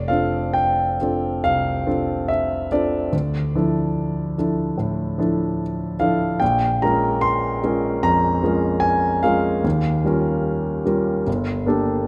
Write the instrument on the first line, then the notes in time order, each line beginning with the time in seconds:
grand piano
Already playing: F1 D5
0.08 C4 D4 F4 A4 F5
0.53 G5
1.01 C4 D4 F4 A4
1.44 C2 F5
1.86 C4 D4 F4 A4
2.28 E5
2.72 C4 D4 F4 A4 D5
3.13 D2
3.55 F3 D4 E4 A4
4.38 F3 D4 E4 A4
4.78 A2
5.18 F3 D4 E4 A4
6.00 F3 D4 E4 A4 F5
6.40 A#1 G5
6.82 G#3 C#4 F4 A#4 A#5
7.21 C6
7.64 G#3 C#4 F4 A#4
8.03 F2 A#5
8.43 G#3 C#4 F4 A#4
8.80 G#5
9.23 G#3 C#4 F4 A#4 F5
9.64 D#2
10.04 G3 C#4 F4 A#4
10.85 G3 C#4 F4 A#4
11.27 G1
11.66 A#3 D4 G4 A4